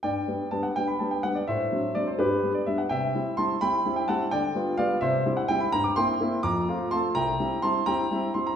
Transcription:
<<
  \new Staff \with { instrumentName = "Grand piano" } { \time 6/8 \key g \major \tempo 4. = 84 <d'' g''>4 a''16 fis''16 g''16 b''16 a''16 g''16 fis''16 d''16 | <c'' e''>4 d''16 c''16 <g' b'>8. d''16 e''16 fis''16 | <e'' g''>4 <a'' c'''>8 <g'' b''>8. g''16 <fis'' a''>8 | <d'' g''>4 <d'' f''>8 <c'' e''>8. fis''16 g''16 b''16 |
\key c \mixolydian bes''16 d'''16 <g'' c'''>4 <bes'' d'''>4 <a'' c'''>8 | <g'' bes''>4 <a'' c'''>8 <g'' bes''>4 c'''16 bes''16 | }
  \new Staff \with { instrumentName = "Grand piano" } { \time 6/8 \key g \major g,8 <g b d'>8 <g b d'>8 <g b d'>8 <g b d'>8 <g b d'>8 | a,8 <fis c' d'>8 <fis c' d'>8 g,8 <g b d'>8 <g b d'>8 | c8 <g c' e'>8 <g c' e'>8 <g c' e'>8 <g c' e'>8 <g c' e'>8 | d8 <g b f'>8 <g b f'>8 c8 <g c' e'>8 <g c' e'>8 |
\key c \mixolydian g,8 <bes c' e'>8 <bes c' e'>8 f,8 <a c' f'>8 <a c' f'>8 | c,8 <g c' e'>8 <g c' e'>8 <g c' e'>8 <g c' e'>8 <g c' e'>8 | }
>>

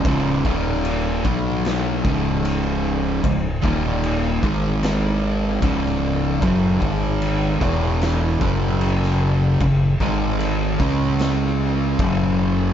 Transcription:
<<
  \new Staff \with { instrumentName = "Distorted electric guitar" } { \clef bass \time 4/4 \key cis \minor \tempo 4 = 75 <cis, gis, cis>8 <dis, ais, dis>4 <b, fis b>4 <cis, gis, cis>4. | <cis, gis,>8 <dis, ais, dis>4 <gis, dis gis>4. <cis, gis, cis>4 | <fis, cis fis>8 <gis, dis gis>4 <e, b, e>4 <fis, cis fis>4. | <fis, cis>8 <gis, dis gis>4 <cis gis cis'>4. <fis, cis fis>4 | }
  \new Staff \with { instrumentName = "Fingered electric bass" } { \clef bass \time 4/4 \key cis \minor cis,,8 dis,,4 b,,4 cis,,4. | cis,,8 dis,,4 gis,,4. cis,,4 | fis,,8 gis,,4 e,,4 fis,,4. | fis,,8 gis,,4 cis,4. fis,,4 | }
  \new DrumStaff \with { instrumentName = "Drums" } \drummode { \time 4/4 <cymc bd>8 bd8 cymc8 bd8 <cymc sn>8 bd8 cymc4 | <cymc bd>8 bd8 cymc8 bd8 <cymc sn>4 <cymc bd>16 sn8. | <cymc bd>8 bd8 cymc8 bd8 <cymc sn>8 bd8 cymc16 sn8. | <cymc bd>8 bd8 cymc8 bd8 <cymc sn>4 <cymc bd>4 | }
>>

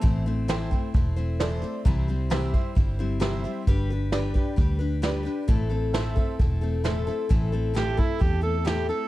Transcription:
<<
  \new Staff \with { instrumentName = "Honky-tonk piano" } { \time 4/4 \key a \minor \tempo 4 = 132 r4 <a' c'' g''>4 r4 <a' c'' d''>4 | r4 <g' c'' e''>4 r4 <g' c'' e''>4 | r4 <g' b' d''>4 r4 <g' b' d''>4 | r4 <a' c'' e''>4 r4 <a' c'' e''>4 |
r1 | }
  \new Staff \with { instrumentName = "Harmonica" } { \time 4/4 \key a \minor r1 | r1 | r1 | r1 |
r4 g'8 e'8 g'8 a'8 g'8 a'8 | }
  \new Staff \with { instrumentName = "Steel-string acoustic guitar" } { \time 4/4 \key a \minor <a, e a c' e' c''>8 <a c' e' c''>8 <a, e a c' e' c''>8 <a c' e' c''>8 <a c' e' c''>8 <a c' e' c''>8 <a, e a c' e' c''>8 <a c' e' c''>8 | <c e g c' e' c''>8 <g c' e' c''>8 <c e g c' e' c''>8 <g c' e' c''>8 <g c' e' c''>8 <g c' e' c''>8 <c e g c' e' c''>8 <g c' e' c''>8 | <g d' g' b'>8 <d' g' b'>8 <g d' g' b'>8 <d' g' b'>8 <g d' g' b'>8 <d' g' b'>8 <g d' g' b'>8 <d' g' b'>8 | <a, e a c' e' a'>8 <a c' e' a'>8 <a, e a c' e' a'>8 <a c' e' a'>8 <a c' e' a'>8 <a c' e' a'>8 <a, e a c' e' a'>8 <a c' e' a'>8 |
<a, e a c' e' a'>8 <a c' e' a'>8 <a, e a c' e' a'>8 <a c' e' a'>8 <a c' e' a'>8 <a c' e' a'>8 <a, e a c' e' a'>8 <a c' e' a'>8 | }
  \new Staff \with { instrumentName = "Fingered electric bass" } { \clef bass \time 4/4 \key a \minor a,,2 e,,2 | c,2 g,,2 | g,,2 d,2 | a,,2 e,,2 |
a,,2 e,2 | }
  \new DrumStaff \with { instrumentName = "Drums" } \drummode { \time 4/4 <hh bd>4 <hh sn>8 bd8 <hh bd>4 <hh sn>8 hh8 | <hh bd>4 sn8 bd8 <hh bd>4 <hh sn>8 hh8 | <hh bd>4 <hh sn>8 bd8 <hh bd>4 <hh sn>8 hh8 | <hh bd>4 <hh sn>8 bd8 <hh bd>4 <hh sn>8 hh8 |
<hh bd>4 <hh sn>8 bd8 <hh bd>4 <hh sn>8 hh8 | }
>>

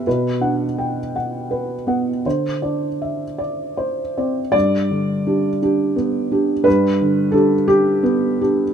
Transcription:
\new Staff \with { instrumentName = "Felt piano" } { \time 6/8 \key g \major \tempo 4. = 55 << { b'8 fis''8 g''8 fis''8 b'8 fis''8 | c''8 d''8 e''8 d''8 c''8 d''8 | d''2. | b'4 a'8 g'4. | } \\ { b,8 d'4 r4 b8 | d8 d'4 r4 c'8 | g,8 d8 <d' g'>8 <d' g'>8 b8 <d' g'>8 | g,8 d8 <d' g'>8 d'8 b8 <d' g'>8 | } >> }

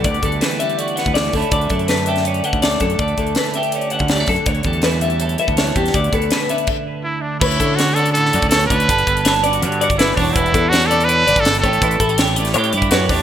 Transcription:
<<
  \new Staff \with { instrumentName = "Clean electric guitar" } { \time 4/4 \key d \major \tempo 4 = 163 d''8 a'8 b'8 e''8 d''8 fis''8 d''8 a'8 | d''8 a'8 b'8 e''8 d''8 fis''8 d''8 a'8 | d''8 a'8 b'8 e''8 d''8 fis''8 d''8 a'8 | cis''8 a'8 b'8 e''8 cis''8 e''8 cis''8 g'8 |
d''8 a'8 b'8 e''8 r2 | b'8 a'8 cis''8 d''8 cis''8 d''8 b'8 cis''8 | b'8 a'8 cis''8 d''8 cis''8 d''8 b'8 cis''8 | b'8 a'8 cis''8 d''8 cis''8 d''8 b'8 cis''8 |
b'8 a'8 cis''8 d''8 cis''8 d''8 b'8 cis''8 | }
  \new Staff \with { instrumentName = "Trumpet" } { \time 4/4 \key d \major r1 | r1 | r1 | r1 |
r2. e'8 d'8 | e'4 fis'8 a'8 a'4 a'8 b'8~ | b'4. r4. e'8 d'8 | e'4 fis'8 a'8 b'4 a'8 a'8~ |
a'4. r4. fis'8 d'8 | }
  \new Staff \with { instrumentName = "Clean electric guitar" } { \time 4/4 \key d \major << { <g b>8 g4 g8 fis'8 b4 <d a cis' e'>8 | a4 a8 g'8 cis'4 a8 r8 | a4 a8 g'8 cis'4 g16 a16 r8 | r8 g4 g8 a'8 b4 g8 |
r8 b4 b8 r2 | cis'8 cis'8 cis'8 fis'4 fis'8 cis'4 | a'8 b8 a'8 fis'4 fis'8 b8 <e g d' fis'>8 | g8 d'8 d'4 d'4. g'8 |
e'8 e'16 g'16 g'4 g'8 e'4 g'8 | } \\ { d,4 e2 e8 d,8~ | d,8 d2 d4 d,8~ | d,8 d2 d4 d,8 | d,4 e2 e4 |
d,4 d2. | d,2 a,4. d8 | g,2 d4. e,8~ | e,4. b,4 fis,8 g,8 a,8~ |
a,4. a,4. cis'8 a,8 | } >> }
  \new Staff \with { instrumentName = "Fingered electric bass" } { \clef bass \time 4/4 \key d \major d,8 d,8 r4. r16 d,8. d,16 r16 | d,8 fis,2 r16 d,8. fis,8 | d,8 d,8 r4. r16 d,8. fis,16 r16 | d,8 e,2 r16 d,8. e,8 |
d,8 d,8 r2. | d,8 d2 fis,16 d,8. d,8 | g,,8 g,,4. g,8. g,,8. e,,8 | e,,8 e,2 g,,16 g,,8. a,,8 |
a,,8 a,,4. a,8 g,8 fis,8 e,8 | }
  \new DrumStaff \with { instrumentName = "Drums" } \drummode { \time 4/4 <hh bd>16 hh16 <hh bd>16 hh16 <hh sn>16 hh16 hh16 hh16 hh16 hh16 <hh sn>16 <hh bd>16 <hh sn>16 hh16 <hho bd>16 hh16 | <hh bd>16 hh16 <hh bd>16 hh16 <hh sn>16 hh16 hh16 <hh sn>16 hh16 hh16 hh16 <hh bd>16 <hh sn>16 hh16 <hh bd>16 hh16 | <hh bd>16 hh16 <hh bd>16 hh16 <hh sn>16 hh16 hh16 hh16 hh16 hh16 hh16 <hh bd>16 <hh sn>16 hh16 <hho bd>16 hh16 | <hh bd>16 hh16 <hh bd>16 hh16 <hh sn>16 hh16 hh16 hh16 hh16 hh16 hh16 <hh bd>16 <hh sn>16 hh16 <hh bd>16 <hh sn>16 |
<hh bd>16 hh16 <hh bd>16 hh16 <hh sn>16 hh16 hh16 hh16 <cymc bd>4 r4 | <cymc bd>16 hh16 <hh bd>8 <hh sn>16 hh16 hh16 hh16 hh16 sn16 hh16 <hh bd>16 <hh sn>16 hh16 <hh bd>16 hh16 | <hh bd>16 hh16 <hh bd>16 hh16 <hh sn>16 hh16 hh16 hh16 hh16 hh16 hh16 <hh bd>16 <hh sn>8 <hho bd>8 | <hh bd>16 hh16 <hh bd>8 <hh sn>16 hh16 hh16 hh16 hh8 hh16 <hh bd>16 <hh sn>16 hh16 <hh bd>16 hh16 |
<hh bd>16 hh16 <hh bd>16 hh16 <hh sn>16 hh16 hh16 <hh sn>16 hh16 hh16 hh16 <hh bd>16 <hh sn>8 <hho bd>8 | }
>>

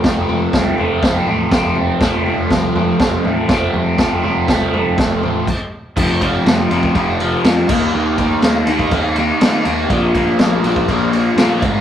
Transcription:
<<
  \new Staff \with { instrumentName = "Overdriven electric guitar" } { \clef bass \time 4/4 \key f \mixolydian \tempo 4 = 122 <f, c f a c'>8 <f a c'>8 <c f a c'>8 <f a c'>8 <f, c f a c'>8 <f a c'>8 <c f a c'>4 | <f, c f a c'>8 <f a c'>8 <c f a c'>8 <f a c'>8 <f, c f a c'>8 <f a c'>8 <c f a c'>4 | <f, c f a c'>8 <f a c'>8 <c f a c'>8 <f a c'>8 <f, c f a c'>8 <f a c'>8 r4 | <f, c f>8 <f, c f>8 <f, c f>8 <f, c f>8 <f, c f>8 <f, c f>8 <f, c f>8 <ees bes ees'>8 |
<ees bes ees'>8 <ees bes ees'>8 <ees bes ees'>8 <ees bes ees'>8 <ees bes ees'>8 <ees bes ees'>8 <ees bes ees'>8 <ees bes ees'>8 | <bes, f bes>8 <bes, f bes>8 <bes, f bes>8 <bes, f bes>8 <bes, f bes>8 <bes, f bes>8 <bes, f bes>8 <aes, ees aes>8 | }
  \new Staff \with { instrumentName = "Picked electric bass" } { \clef bass \time 4/4 \key f \mixolydian f,,8 f,,8 c,8 f,,8 f,,8 a,,8 f,,8 f,,8 | f,,8 f,,8 c,8 f,,8 f,,8 a,,8 f,,8 f,,8 | f,,8 f,,8 c,8 f,,8 f,,8 a,,8 r4 | f,,4 f,,8 f,,8 f,,4 f,8 ees,8 |
ees,4 ees,8 ees,8 ees,4 ees8 ees,8 | bes,,4 bes,,8 bes,,8 bes,,4 bes,8 aes,,8 | }
  \new DrumStaff \with { instrumentName = "Drums" } \drummode { \time 4/4 <bd sn tomfh>8 tomfh8 <bd sn tomfh>8 tomfh8 <bd sn tomfh>8 tomfh8 <bd sn tomfh>8 tomfh8 | <bd sn tomfh>8 tomfh8 <bd sn tomfh>8 tomfh8 <bd sn tomfh>8 tomfh8 <bd sn tomfh>8 tomfh8 | <bd sn tomfh>8 tomfh8 <bd sn tomfh>8 tomfh8 <bd sn tomfh>8 tomfh8 <cymc bd>4 | <cymc bd>8 <bd cymr>8 <cymr sn>8 cymr16 bd16 <bd cymr>8 cymr8 <cymr sn>8 <cymc bd>8 |
r8 <bd cymr>8 <cymr sn>8 cymr16 bd16 <bd cymr>8 cymr8 <cymr sn>8 cymr8 | <bd cymr>8 <bd cymr>8 <cymr sn>8 cymr16 bd16 <bd cymr>8 cymr8 <cymr sn>8 <bd cymr>8 | }
>>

